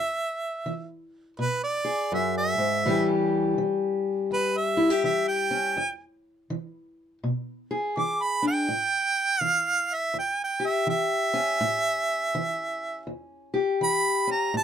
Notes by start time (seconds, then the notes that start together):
Already playing: E2 E5
0.66 E3
1.39 B2 B4
1.64 D5
1.85 G#4
2.12 F#2 E5
2.38 E5
2.58 G#2
2.86 A2 E3 G3 C#4 G4
3.58 E3
4.31 E2 B4
4.57 E5
4.77 E4
4.90 G4
5.04 E3 E5
5.28 G5
5.51 C#4
5.77 E2
6.50 E3
7.24 B2
7.71 G#4
7.97 E3 D6
8.23 B5
8.42 D4
8.48 G5
8.69 A2
9.41 E3 F5
9.94 E5
10.14 E2
10.19 G5
10.44 G5
10.60 G4
10.66 E5
10.87 E3 E5
11.34 C#4
11.61 A2
12.35 E3
13.07 E2
13.54 G4
13.81 E3 B5
14.27 C#4
14.32 A#5
14.54 A2 A5